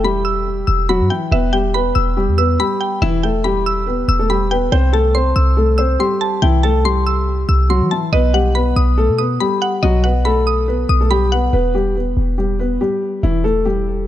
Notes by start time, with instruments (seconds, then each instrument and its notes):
Already playing: 808-style bass E1, synth pluck E5 G5
0.04 grand piano G3 G4, synth pluck B5
0.25 synth pluck E6
0.67 808-style bass E1, synth pluck E6
0.89 grand piano F#3 F#4, synth pluck B5
1.00 808-style bass G2
1.10 grand piano E3 E4, synth pluck G5
1.31 808-style bass E1, grand piano B3 B4, synth pluck E5
1.53 grand piano G3 G4, synth pluck G5
1.74 grand piano B3 B4, synth pluck B5
1.95 808-style bass E1, synth pluck E6
2.17 grand piano G3 G4
2.28 808-style bass E2
2.38 grand piano B3 B4, synth pluck E6
2.59 grand piano G3 G4, synth pluck B5
2.81 synth pluck G5
3.02 808-style bass E1, grand piano E3 E4, synth pluck E5
3.23 grand piano A3 A4, synth pluck G5
3.44 grand piano G3 G4, synth pluck B5
3.66 synth pluck E6
3.87 grand piano B3 B4
4.08 808-style bass E1, synth pluck E6
4.19 grand piano A3 A4
4.29 grand piano G3 G4, synth pluck B5
4.51 grand piano B3 B4, synth pluck G5
4.72 808-style bass C2, grand piano C4 C5, synth pluck G5
4.93 grand piano A3 A4, synth pluck A5
5.15 grand piano C4 C5, synth pluck C6
5.36 808-style bass C2, synth pluck E6
5.57 grand piano A3 A4
5.78 grand piano C4 C5, synth pluck E6
5.99 grand piano G3 G4, synth pluck C6
6.21 synth pluck A5
6.42 808-style bass C2, grand piano E3 E4, synth pluck G5
6.63 grand piano A3 A4, synth pluck A5
6.85 grand piano G3 G4, synth pluck C6
7.07 synth pluck E6
7.49 808-style bass C2, synth pluck E6
7.70 grand piano F#3 F#4, synth pluck C6
7.81 808-style bass E3
7.91 grand piano E3 E4, synth pluck A5
8.13 808-style bass B1, grand piano B3 B4, synth pluck D#5
8.33 grand piano G3 G4, synth pluck F#5
8.55 grand piano B3 B4, synth pluck B5
8.76 808-style bass B1, synth pluck D#6
8.98 grand piano A3 A4
9.09 808-style bass B2
9.18 grand piano B3 B4, synth pluck D#6
9.40 grand piano G3 G4, synth pluck B5
9.62 synth pluck F#5
9.83 808-style bass B1, grand piano F#3 F#4, synth pluck D#5
10.04 grand piano B3 B4, synth pluck F#5
10.25 grand piano A3 A4, synth pluck B5
10.47 synth pluck D#6
10.68 grand piano B3 B4
10.89 808-style bass B1, synth pluck D#6
11.01 grand piano A3 A4
11.11 grand piano G3 G4, synth pluck B5
11.32 grand piano B3 B4, synth pluck F#5
11.53 808-style bass E1, grand piano B3 B4
11.75 grand piano G3 G4
11.96 grand piano B3 B4
12.17 808-style bass E1
12.38 grand piano G3 G4
12.59 grand piano B3 B4
12.81 grand piano G3 G4
13.23 808-style bass E1, grand piano E3 E4
13.44 grand piano A3 A4
13.65 grand piano G3 G4